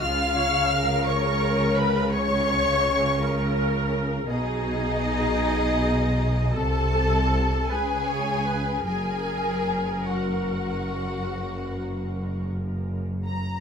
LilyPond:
<<
  \new Staff \with { instrumentName = "Violin section" } { \time 12/8 \key fis \major \tempo 4. = 53 eis'''4. cis'''4 b''8 cis'''2~ cis'''8 r8 | dis''2. a''4. gis''4. | gis''4. fis''2. r4 ais''8 | }
  \new Staff \with { instrumentName = "Viola section" } { \time 12/8 \key fis \major eis'8 cis''8 ais'2 cis''4. ais'4. | gis'2. a'4. b'8 cis''8 b'8 | ais'1~ ais'4~ ais'16 r8. | }
  \new Staff \with { instrumentName = "Violin section" } { \time 12/8 \key fis \major eis''4. cis''4 b'8 cis''2~ cis''8 r8 | dis'2. a'4. gis'4. | gis'4. fis'2. r4 ais''8 | }
  \new Staff \with { instrumentName = "Cello section" } { \clef bass \time 12/8 \key fis \major cis1. | b,2. c4. cis4. | fis,1~ fis,4. r8 | }
  \new Staff \with { instrumentName = "Double bass section" } { \clef bass \time 12/8 \key fis \major cis,1. | b,,2. c,4. cis,4. | fis,,1~ fis,,4. r8 | }
>>